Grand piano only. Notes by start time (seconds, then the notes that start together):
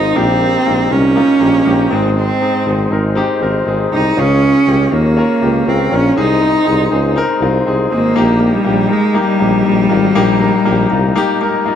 Already playing: C3 C4 D#4 F4 G#4 A#4
0.16 A#2 A#3 D#4 G4
0.41 A#3 D#4 G4
0.66 A#3 D#4 F4
0.91 A#3 D#4 A#4
1.16 A#3 D#4 F4
1.40 A#3 D#4 G4
1.65 A#3 D#4 G4
1.91 G#2 C4 D#4 G#4
2.41 C4 D#4 G#4
2.66 C4 D#4 G#4
2.91 C4 D#4 A#4
3.15 C4 D#4 G4
3.41 C4 D#4 A#4
3.66 C4 D#4 G#4
3.91 C4 D#4 G4
4.17 C#3 C#4 F4 G#4
4.41 C#4 F4 G#4
4.67 C#4 F4 G4
4.91 C#4 F4 A#4
5.17 C#4 F4 A#4
5.41 C#4 F4 G4
5.66 C#4 F4 A#4
5.91 C#4 F4 A#4
6.16 C3 C4 D#4 G#4
6.40 C4 D#4 G#4
6.65 C4 D#4 G#4
6.91 C4 D#4 G#4
7.16 C4 D#4 A#4
7.41 C4 D#4 F4
7.66 C4 D#4 G#4
7.90 C4 D#4 G#4
8.16 A#2 A#3 D#4 G4
8.40 A#3 D#4 G4
8.65 A#3 D#4 G4
8.89 A#3 D#4 A#4
9.14 A#3 D#4 G4
9.39 A#3 D#4 G4
9.64 A#3 D#4 G4
9.89 A#3 D#4 F4
10.15 A#2 A#3 D#4 G4
10.40 A#3 D#4 A#4
10.65 A#3 D#4 G4
10.90 A#3 D#4 F4
11.16 A#3 D#4 G4
11.41 A#3 D#4 A#4
11.66 A#3 D#4 F4